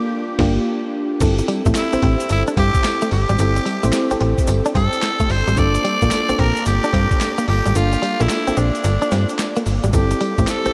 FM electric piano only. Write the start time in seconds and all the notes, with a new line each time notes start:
Already playing: A#3 D4 F4 A#4
0.38 A#3 D4 F4 G4
1.20 C4 E4 G4 A4
1.65 C4 E4 G4 A4
1.93 C4 E4 G4 C5
3.38 C4 E4 G4 A4
3.83 C4 E4 G4 C5
4.11 C4 E4 G4 A4
5.56 A#3 D4 F4 A4
6.02 A#3 D4 F4 A4
6.29 A#3 D4 F4 A4
7.75 A#3 D4 F4 A4
8.20 A#3 D4 F4 A4
8.47 A#3 D4 F4 A4
9.93 C4 E4 G4 A4
10.38 C4 E4 G4 C5
10.65 C4 E4 G4 A4